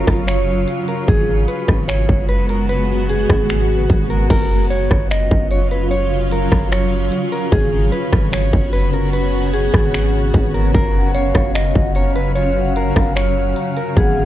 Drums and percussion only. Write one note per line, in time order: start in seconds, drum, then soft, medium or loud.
0.07 kick medium
0.07 cross-stick loud
0.07 open hi-hat medium
0.28 finger snap loud
0.28 closed hi-hat medium
0.68 closed hi-hat medium
0.88 closed hi-hat medium
1.08 kick loud
1.08 closed hi-hat medium
1.48 closed hi-hat medium
1.69 kick medium
1.69 cross-stick loud
1.89 finger snap loud
1.89 closed hi-hat medium
2.09 kick loud
2.29 closed hi-hat medium
2.49 closed hi-hat medium
2.69 closed hi-hat medium
3.09 closed hi-hat medium
3.30 kick loud
3.30 cross-stick loud
3.50 finger snap loud
3.50 closed hi-hat medium
3.90 kick medium
3.90 closed hi-hat medium
4.10 closed hi-hat medium
4.30 kick loud
4.30 closed hi-hat medium
4.30 crash loud
4.70 closed hi-hat medium
4.91 kick loud
4.91 cross-stick loud
5.11 finger snap loud
5.11 closed hi-hat medium
5.31 kick loud
5.51 closed hi-hat medium
5.71 closed hi-hat medium
5.91 closed hi-hat medium
6.31 closed hi-hat medium
6.52 kick medium
6.52 cross-stick loud
6.52 open hi-hat medium
6.72 finger snap loud
6.72 closed hi-hat medium
7.12 closed hi-hat medium
7.32 closed hi-hat medium
7.52 kick loud
7.52 closed hi-hat medium
7.93 closed hi-hat medium
8.13 kick loud
8.13 cross-stick loud
8.33 finger snap loud
8.33 closed hi-hat medium
8.53 kick loud
8.73 closed hi-hat medium
8.93 closed hi-hat medium
9.13 closed hi-hat medium
9.54 closed hi-hat medium
9.74 kick medium
9.74 cross-stick loud
9.94 finger snap loud
9.94 closed hi-hat medium
10.34 kick loud
10.34 closed hi-hat medium
10.55 closed hi-hat medium
10.74 kick loud
10.74 closed hi-hat medium
11.15 closed hi-hat medium
11.35 kick medium
11.35 cross-stick loud
11.55 finger snap loud
11.55 closed hi-hat medium
11.75 kick loud
11.95 closed hi-hat medium
12.16 closed hi-hat medium
12.36 closed hi-hat medium
12.76 closed hi-hat medium
12.96 kick medium
12.96 cross-stick loud
12.96 open hi-hat medium
13.16 finger snap loud
13.16 closed hi-hat medium
13.56 closed hi-hat medium
13.77 closed hi-hat medium
13.97 kick loud
13.97 closed hi-hat medium